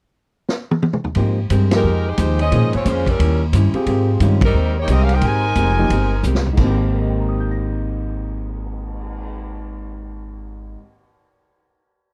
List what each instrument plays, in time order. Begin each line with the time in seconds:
0.49 snare
0.71 high tom
0.82 high tom
0.93 mid tom
1.04 floor tom
1.15 upright bass G#2, grand piano F3 A#3 D#4 G4, hollow-body jazz guitar G#3 C4 G4, kick, ride
1.19 hollow-body jazz guitar A#4
1.50 upright bass G2, hollow-body jazz guitar G#3 C4 G4 A#4, kick, hi-hat pedal, ride
1.71 grand piano F3 A#3 D#4 G4, snare, ride
1.75 saxophone section G#3 D#4 G4 A#4
1.84 upright bass F2, hollow-body jazz guitar F3 G#3 D#4 G4
2.07 saxophone section G#3 D#4 G4 C5
2.17 upright bass D#2, hollow-body jazz guitar F3 G#3 D#4 G4, kick, hi-hat pedal, ride
2.39 saxophone section C#4 G#4 C5 D#5, ride
2.52 upright bass A#2, grand piano F3 A#3 D#4 G#4, hollow-body jazz guitar A#3 C#4 G#4 C5, kick, ride
2.62 upright bass G#2
2.73 upright bass F2, saxophone section G#3 C4 F4 C#5, ride
2.85 upright bass F2, saxophone section G#3 C#4 F4 C5, hollow-body jazz guitar A#3 C#4 G#4 C5, kick, hi-hat pedal, ride
3.06 saxophone section G3 C#4 E4 A#4, kick, ride
3.19 upright bass D#2, hollow-body jazz guitar D#3 G3 C#4 E4, kick, ride
3.53 upright bass G2, hollow-body jazz guitar D#3 G3 C#4 E4, kick, hi-hat pedal, ride
3.73 grand piano C4 F4 G4 G#4, muted upright bass stroke, ride
3.86 upright bass G#2, hollow-body jazz guitar G#3 C4 G4 A#4, kick, ride
4.20 upright bass G2, grand piano D#3 G#3 C#4 F4, hollow-body jazz guitar G#3 C4 G4 A#4, kick, hi-hat pedal, ride
4.41 saxophone section G3 C4 D#4 A#4, kick, ride
4.53 upright bass D#2, hollow-body jazz guitar G#3 C4 G4
4.57 hollow-body jazz guitar A#4
4.79 saxophone section A#3 D#4 G4 C#5
4.88 upright bass C2, hollow-body jazz guitar G#3 C4 G4 A#4, kick, hi-hat pedal, ride
4.92 saxophone section C4 G4 A#4 D#5
5.02 saxophone section C#4 G4 A#4 F5
5.09 ride
5.14 saxophone section D#4 A#4 C5 G5
5.21 upright bass G#1, hollow-body jazz guitar G#3 C4 G4, kick, ride
5.26 saxophone section D#4 A#4 C5 G#5, hollow-body jazz guitar A#4
5.55 upright bass F1, hollow-body jazz guitar G#3 C4 G4 A#4, kick, hi-hat pedal, ride
5.78 grand piano F3 A#3 D#4 G4
5.90 upright bass G1, hollow-body jazz guitar G#3 C4 G4, kick, ride
5.95 hollow-body jazz guitar A#4
6.23 upright bass C2, hollow-body jazz guitar G#3 C4 G4, hi-hat pedal
6.28 hollow-body jazz guitar A#4
6.35 snare
6.46 floor tom
6.53 grand piano G#2 D#3, hollow-body jazz guitar G#3
6.57 upright bass G#1, grand piano A#3, hollow-body jazz guitar C4, kick, crash
6.62 grand piano C4 G4
6.67 hollow-body jazz guitar G4
6.72 hollow-body jazz guitar A#4
6.78 cymbal swell
6.94 grand piano A#4
7.02 grand piano D#5
7.10 grand piano G5
7.19 grand piano A#5
7.29 grand piano D#6
7.40 grand piano G6
7.51 grand piano A#6